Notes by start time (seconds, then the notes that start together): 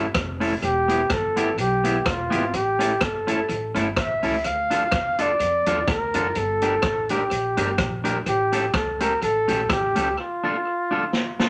Already playing: G1
0.14 F1, kick, cross-stick, closed hi-hat
0.40 C#4 E4 A4, open hi-hat
0.62 E1 G4, closed hi-hat
0.88 B3 E4 G4, closed hi-hat
1.09 G1 A4, muted clean electric guitar stroke, kick, cross-stick, closed hi-hat
1.36 B3 E4 G4, closed hi-hat
1.58 B1 G4, closed hi-hat
1.84 B3 E4 G4, closed hi-hat
2.05 E1 F4, muted clean electric guitar stroke, kick, cross-stick, closed hi-hat
2.30 G#1 B3 E4 G4, closed hi-hat
2.54 A1 G4, closed hi-hat
2.79 C#4 E4 A4, closed hi-hat
3.01 G1 A4, kick, cross-stick, closed hi-hat
3.27 C#4 E4 A4, closed hi-hat
3.49 A1, closed hi-hat
3.75 G1 C#4 E4 A4, closed hi-hat
3.96 A1 E5, kick, cross-stick, closed hi-hat
4.23 C#2 C#4 E4 A4, open hi-hat
4.44 D2 F5, closed hi-hat
4.71 D4 F4 A4, closed hi-hat
4.91 E2, muted clean electric guitar stroke, kick, cross-stick, closed hi-hat
5.18 D4 F4 A4 D5, closed hi-hat
5.40 F2, closed hi-hat
5.66 E2 D4 F4 A4, closed hi-hat
5.88 D2 A#4, muted clean electric guitar stroke, kick, cross-stick, closed hi-hat
6.14 F#1 D4 F4 A4, closed hi-hat
6.35 G1 A4, closed hi-hat
6.62 D4 G4 A#4, closed hi-hat
6.82 A1, kick, cross-stick, closed hi-hat
7.09 D4 G4 A#4, closed hi-hat
7.31 A#1, closed hi-hat
7.57 G1 D4 G4 A#4, closed hi-hat
7.78 A#1, kick, cross-stick, closed hi-hat
8.04 D4 G4 A#4, closed hi-hat
8.26 A1 G4, closed hi-hat
8.52 C#4 G4 A4, closed hi-hat
8.74 C#2 A4, muted clean electric guitar stroke, kick, cross-stick, closed hi-hat
9.00 C#4 G4 A4 A#4, closed hi-hat
9.22 A1 A4, closed hi-hat
9.48 A#1 C#4 G4 A4, closed hi-hat
9.69 A1 G4, muted clean electric guitar stroke, kick, cross-stick, closed hi-hat
9.96 C#2 C#4 G4 A4, closed hi-hat
10.19 F4
10.44 D4 F4 A4
10.91 D4 F4 A4
11.13 snare
11.39 D4 F4 A4, snare